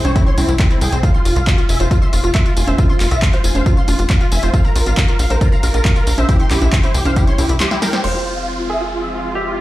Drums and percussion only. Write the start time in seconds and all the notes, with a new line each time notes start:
0.05 closed hi-hat, tambourine, high conga
0.16 kick, closed hi-hat, tambourine
0.27 tambourine
0.38 open hi-hat, tambourine, high conga
0.49 closed hi-hat, tambourine
0.59 kick, clap, closed hi-hat, tambourine
0.71 closed hi-hat, tambourine
0.81 open hi-hat, tambourine
0.92 closed hi-hat, tambourine
1.03 kick, closed hi-hat, tambourine
1.14 tambourine
1.25 open hi-hat, tambourine
1.36 closed hi-hat, tambourine
1.47 kick, clap, closed hi-hat, tambourine
1.58 closed hi-hat, tambourine
1.69 open hi-hat, tambourine
1.80 closed hi-hat, tambourine
1.91 kick, closed hi-hat, tambourine
2.02 tambourine
2.13 open hi-hat, tambourine
2.24 closed hi-hat, tambourine
2.35 kick, clap, closed hi-hat, tambourine
2.46 closed hi-hat, tambourine
2.57 open hi-hat, tambourine
2.68 closed hi-hat, tambourine, high conga
2.78 kick, closed hi-hat, tambourine
2.89 tambourine
3.00 clap, open hi-hat, tambourine
3.11 closed hi-hat, tambourine
3.22 kick, clap, closed hi-hat, tambourine
3.33 closed hi-hat, tambourine
3.44 open hi-hat, tambourine
3.55 closed hi-hat, tambourine, high conga
3.66 kick, closed hi-hat, tambourine
3.77 tambourine
3.88 open hi-hat, tambourine, high conga
3.99 closed hi-hat, tambourine
4.10 kick, clap, closed hi-hat, tambourine
4.21 closed hi-hat, tambourine
4.32 open hi-hat, tambourine
4.43 closed hi-hat, tambourine
4.54 kick, closed hi-hat, tambourine
4.65 tambourine
4.76 open hi-hat, tambourine
4.86 closed hi-hat, tambourine
4.97 kick, clap, closed hi-hat, tambourine
5.08 closed hi-hat, tambourine
5.19 open hi-hat, tambourine
5.30 closed hi-hat, tambourine
5.41 kick, closed hi-hat, tambourine
5.52 tambourine
5.63 open hi-hat, tambourine
5.74 closed hi-hat, tambourine
5.85 kick, clap, closed hi-hat, tambourine
5.96 closed hi-hat, tambourine
6.07 open hi-hat, tambourine
6.18 closed hi-hat, tambourine, high conga
6.29 kick, closed hi-hat, tambourine
6.40 closed hi-hat, tambourine
6.51 clap, open hi-hat, tambourine, high conga
6.62 closed hi-hat, tambourine, high conga
6.73 kick, clap, closed hi-hat, tambourine
6.84 closed hi-hat, tambourine
6.95 open hi-hat, tambourine
7.05 closed hi-hat, tambourine, high conga
7.16 kick, closed hi-hat, tambourine
7.27 closed hi-hat, tambourine
7.38 open hi-hat, tambourine, high conga
7.49 closed hi-hat, tambourine
7.60 snare, clap, closed hi-hat, tambourine
7.71 snare, closed hi-hat, tambourine
7.82 snare, open hi-hat, tambourine
7.93 snare, closed hi-hat, tambourine
8.04 crash